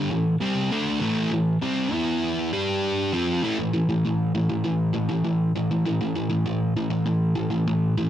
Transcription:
0.11 A2 E3
0.41 C3 G3 C4
0.72 D3 A3 D4
1.01 A2 E3 A3
1.32 A2 E3
1.62 C3 G3 C4
1.92 E3 B3 E4
2.53 G3 D4 G4
3.13 F3 C4 F4
3.44 A2 E3 A3
3.59 A2 E3
3.73 A2 E3
3.89 A2 E3
4.05 A2 E3
4.35 A2 E3
4.50 A2 E3
4.64 A2 E3
4.94 A2 E3
5.09 A2 E3
5.24 A2 E3
5.56 A2 E3
5.71 A2 E3
5.85 A2 E3
6.01 A2 E3
6.15 A2 E3
6.30 A2 E3
6.46 A2 E3
6.76 A2 E3
6.90 A2 E3
7.06 A2 E3
7.35 A2 E3
7.50 A2 E3
7.68 A2 E3
7.98 A2 E3

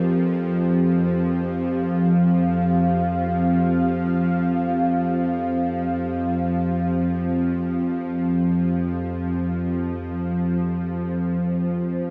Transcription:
Already playing: F2 F3 C4 G4 A#4
1.25 F5
10.82 C5

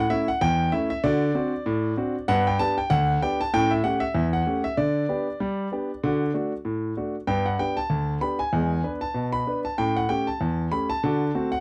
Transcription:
Already playing: F#5
0.10 A3 C#4 E4 E5
0.28 F#5
0.41 E2 G5
0.72 A3 C#4 E4 E5
0.90 E5
1.04 D3 F#4 D5
1.35 C4 D4 F#4
1.66 A2
1.97 C4 D4 F#4
2.28 G2 B3 F#5
2.47 G5
2.59 B3 D4 G4 A5
2.78 G5
2.90 D2 F#5
3.22 B3 D4 G4 G5
3.41 A5
3.54 A2 C#4 G5
3.71 E5
3.83 A3 C#4 G4 F#5
4.00 E5
4.15 E2
4.33 F#5
4.47 A3 C#4 G4
4.64 E5
4.77 D3 D5
5.09 B3 D4 G4
5.40 G3
5.72 B3 D4 G4
6.04 D3 F#4
6.34 A3 D4 F#4
6.65 A2
6.97 A3 D4 F#4
7.27 G2 B3 G5
7.46 F#5
7.59 B3 D4 G4 G5
7.77 A5
7.90 D2
8.21 B3 D4 G4 B5
8.39 G#5
8.53 E2 G#3
8.84 B3 D4 B4
9.01 A5
9.14 B2
9.33 B5
9.47 B3 D4 B4
9.65 A5
9.78 A2 C#4 G5
9.96 F#5
10.09 A3 C#4 G4 G5
10.27 A5
10.41 E2
10.72 A3 C#4 G4 B5
10.90 A5
11.04 D3 F#4
11.35 A3 C4 F#4
11.52 F#5

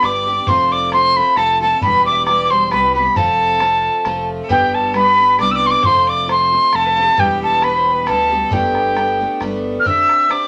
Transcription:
Already playing: D3
0.02 G1 G3 B3 D4 G4 D5 D6, bodhran
0.27 B3 D4 G4
0.47 F1 F3 A3 C4 F4 C5 C6, bodhran
0.59 bodhran
0.72 D5 D6
0.92 F3 A3 C4 F4 C5 C6, bodhran
1.15 A3 C4 F4 B5
1.36 F1 F3 A3 C4 F4 A4 A5, bodhran
1.61 A3 C4 F4 A4 A5
1.81 E1 E3 G3 B3 G4 B4 B5, bodhran
1.94 bodhran
2.06 D5 D6
2.12 D5 E5
2.26 E3 G3 B3 G4 D5 D6, bodhran
2.44 D6
2.49 G3 B3 G4 C5 C6
2.70 C2 E3 G3 B3 G4 B4 B5, bodhran
2.94 G3 B3 G4 B4 B5
3.15 F1 F3 A3 C4 F4 A4 A5, bodhran
3.28 bodhran
3.60 F3 A3 C4 F4, bodhran
4.05 F1 F3 A3 C4 F4, bodhran
4.44 A4
4.49 G1 G3 B3 D4 G4 G5, bodhran
4.62 bodhran
4.74 A4 A5
4.94 G3 B3 D4 G4 B4 B5, bodhran
5.17 B3 D4 G4
5.38 C2 G3 B3 D4 G4 D5 D6, bodhran
5.51 D5 E6
5.56 D6
5.66 D5 C6
5.71 D6
5.83 F1 F3 A3 C4 F4 C5 C6, bodhran
5.96 bodhran
6.08 D5 D6
6.28 F3 A3 C4 F4 C5 C6, bodhran
6.51 A3 C4 F4
6.72 F1 F3 A3 C4 F4 A4 A5, bodhran
6.85 A4 B4
6.96 A3 C4 F4
7.01 G4 A4
7.17 E1 E3 G3 B3 G4 G5, bodhran
7.30 bodhran
7.42 A4 A5
7.61 E3 G3 B3 G4 B4 B5, bodhran
7.77 C5
7.92 B4
8.01 B5
8.06 D2 E3 G3 B3 G4 A4 A5, bodhran
8.30 G3 B3 G4
8.51 G1 G3 A3 B3 D4 G4 G5, bodhran
8.64 bodhran
8.75 bodhran
8.95 G3 A3 B3 D4, bodhran
9.20 A3 B3 D4
9.40 G1 G3 A3 B3 D4, bodhran
9.80 F6
9.84 C4 D4 G4 C5 E5 E6, bodhran
10.09 bodhran
10.29 C4 D4 G4 C5 D5 D6, bodhran

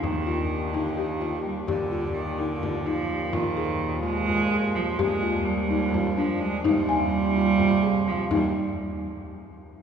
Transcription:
Already playing: D#4
0.02 D#2 D#3 D4 G4, frame drum
0.27 F4
0.74 D3 D#4, frame drum
0.97 D#3 G4
1.21 F4, frame drum
1.45 G3, frame drum
1.67 D#2 A#2 D3 G4 D5, frame drum
1.92 F4
2.14 D#3, frame drum
2.38 D3 D#4
2.62 F4, frame drum
2.85 F3 D#4
3.33 D#2 D#3 F3 F4, frame drum
3.57 G#4
3.81 frame drum
4.03 G#3 F4
4.28 F4, frame drum
4.52 G#4
4.75 F3
4.98 D#2 A#2 G#3 D4 G4, frame drum
5.22 F4
5.45 G3, frame drum
5.70 D#4
5.94 F4, frame drum
6.17 F3 D4
6.40 G#3
6.64 D#2 C3 G3 D#4 F4, frame drum
6.89 G#5
7.36 F4
7.60 F4, frame drum
7.83 G#4
8.08 F3
8.31 D#2 D#3 G3 D4 D#4 G4, frame drum

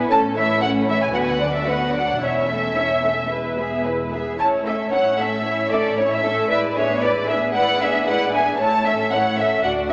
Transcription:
0.09 A1 A2 A3 C#4 A4 A5
0.35 E3 A3 E4 C#5 E5
0.61 A3 C#4 A4 F#5
0.87 E3 A3 E4 C#5 E5
1.02 G#5
1.13 D2 D3 B3 F#4 B4 F#5
1.21 G#5
1.28 F#5
1.40 F#3 D4 D5
1.54 E5
1.66 D3 B3 F#4 B4 F#5
1.93 F#3 D4 D5 F#5
2.20 E1 E2 C#4 E4 C#5 E5
2.48 A3 C#4 A4 E5
2.75 C#4 E4 C#5
3.03 A3 C#4 A4 E5
3.30 G#3 E4 B4
3.57 B3 G#4 E5
3.84 G#3 E4 B4
4.11 B3 G#4 E5
4.38 A1 A2 C#4 E4 C#5 A5
4.65 A3 C#4 A4 E5
4.92 C#4 E4 C#5 F#5
5.18 A3 C#4 A4 E5
5.45 C#4 E4 C#5
5.71 A3 C#4 A4 D5 E5
5.97 C#4 E4 C#5
6.12 E5
6.23 A3 C#4 A4 E5
6.50 G#3 E4 B4 D5 E5
6.75 B3 D4 G#4 C#5 E5
7.01 G#3 E4 B4 D5
7.27 B3 D4 G#4 E5
7.55 G#3 E4 B4 D5 F#5
7.81 B3 D4 G#4 E5
8.07 G#3 E4 B4 D5 F#5
8.33 B3 D4 G#4 E5 G#5
8.59 A1 A2 A3 E4 C#5 A5
8.85 C#4 A4 E5
9.11 A3 E4 C#5 F#5
9.37 C#4 A4 E5
9.63 D2 D4 F#4 D5 F#5
9.89 B3 D4 E5 F#5

